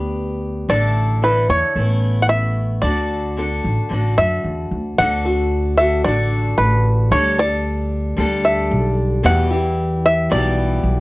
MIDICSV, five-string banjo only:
0, 0, Header, 1, 2, 480
1, 0, Start_track
1, 0, Key_signature, 2, "major"
1, 0, Tempo, 534759
1, 613, Time_signature, 4, 2, 24, 8
1, 9875, End_track
2, 0, Start_track
2, 0, Title_t, "Five-string banjo"
2, 0, Program_c, 0, 105
2, 0, Note_on_c, 0, 79, 68
2, 93, Note_off_c, 0, 79, 0
2, 625, Note_on_c, 0, 74, 86
2, 1109, Note_on_c, 0, 71, 78
2, 1115, Note_off_c, 0, 74, 0
2, 1327, Note_off_c, 0, 71, 0
2, 1344, Note_on_c, 0, 73, 79
2, 1963, Note_off_c, 0, 73, 0
2, 1994, Note_on_c, 0, 78, 65
2, 2051, Note_off_c, 0, 78, 0
2, 2055, Note_on_c, 0, 76, 91
2, 2528, Note_on_c, 0, 74, 80
2, 2553, Note_off_c, 0, 76, 0
2, 3752, Note_on_c, 0, 76, 86
2, 3943, Note_off_c, 0, 74, 0
2, 4467, Note_off_c, 0, 76, 0
2, 4470, Note_on_c, 0, 78, 104
2, 5153, Note_off_c, 0, 78, 0
2, 5181, Note_on_c, 0, 76, 82
2, 5407, Note_off_c, 0, 76, 0
2, 5425, Note_on_c, 0, 74, 84
2, 5905, Note_on_c, 0, 71, 84
2, 5920, Note_off_c, 0, 74, 0
2, 6384, Note_off_c, 0, 71, 0
2, 6388, Note_on_c, 0, 73, 92
2, 6633, Note_off_c, 0, 73, 0
2, 6635, Note_on_c, 0, 74, 87
2, 7551, Note_off_c, 0, 74, 0
2, 7583, Note_on_c, 0, 76, 78
2, 8027, Note_off_c, 0, 76, 0
2, 8312, Note_on_c, 0, 78, 100
2, 9023, Note_off_c, 0, 78, 0
2, 9027, Note_on_c, 0, 76, 91
2, 9259, Note_on_c, 0, 74, 90
2, 9266, Note_off_c, 0, 76, 0
2, 9875, Note_off_c, 0, 74, 0
2, 9875, End_track
0, 0, End_of_file